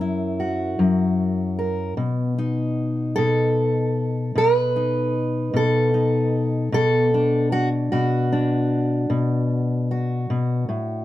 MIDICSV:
0, 0, Header, 1, 2, 480
1, 0, Start_track
1, 0, Tempo, 792602
1, 1196, Time_signature, 12, 3, 24, 8
1, 6691, End_track
2, 0, Start_track
2, 0, Title_t, "Steel-string acoustic guitar"
2, 0, Program_c, 0, 25
2, 0, Note_on_c, 0, 42, 72
2, 0, Note_on_c, 0, 70, 45
2, 6, Note_on_c, 0, 64, 46
2, 241, Note_on_c, 0, 66, 45
2, 471, Note_off_c, 0, 42, 0
2, 478, Note_on_c, 0, 42, 67
2, 953, Note_off_c, 0, 70, 0
2, 961, Note_on_c, 0, 70, 47
2, 1170, Note_off_c, 0, 70, 0
2, 1173, Note_off_c, 0, 64, 0
2, 1191, Note_off_c, 0, 42, 0
2, 1194, Note_on_c, 0, 47, 71
2, 1444, Note_on_c, 0, 63, 45
2, 1909, Note_off_c, 0, 66, 0
2, 1912, Note_on_c, 0, 69, 85
2, 1922, Note_off_c, 0, 47, 0
2, 1925, Note_on_c, 0, 47, 72
2, 2635, Note_off_c, 0, 47, 0
2, 2637, Note_on_c, 0, 47, 72
2, 2651, Note_on_c, 0, 70, 96
2, 2754, Note_off_c, 0, 70, 0
2, 2754, Note_on_c, 0, 71, 96
2, 2876, Note_off_c, 0, 63, 0
2, 2883, Note_on_c, 0, 63, 46
2, 3114, Note_off_c, 0, 69, 0
2, 3345, Note_off_c, 0, 47, 0
2, 3352, Note_on_c, 0, 47, 72
2, 3370, Note_on_c, 0, 69, 90
2, 3589, Note_off_c, 0, 63, 0
2, 3597, Note_on_c, 0, 63, 45
2, 3844, Note_off_c, 0, 71, 0
2, 4045, Note_off_c, 0, 47, 0
2, 4048, Note_off_c, 0, 63, 0
2, 4072, Note_on_c, 0, 47, 74
2, 4076, Note_off_c, 0, 69, 0
2, 4084, Note_on_c, 0, 69, 101
2, 4325, Note_on_c, 0, 62, 50
2, 4553, Note_off_c, 0, 69, 0
2, 4556, Note_on_c, 0, 66, 82
2, 4653, Note_off_c, 0, 66, 0
2, 4794, Note_off_c, 0, 47, 0
2, 4795, Note_on_c, 0, 66, 69
2, 4801, Note_on_c, 0, 47, 73
2, 5034, Note_off_c, 0, 62, 0
2, 5042, Note_on_c, 0, 62, 51
2, 5502, Note_off_c, 0, 47, 0
2, 5509, Note_on_c, 0, 47, 71
2, 5994, Note_off_c, 0, 66, 0
2, 6002, Note_on_c, 0, 66, 45
2, 6231, Note_off_c, 0, 47, 0
2, 6238, Note_on_c, 0, 47, 66
2, 6470, Note_off_c, 0, 47, 0
2, 6472, Note_on_c, 0, 45, 58
2, 6691, Note_off_c, 0, 45, 0
2, 6691, Note_off_c, 0, 62, 0
2, 6691, Note_off_c, 0, 66, 0
2, 6691, End_track
0, 0, End_of_file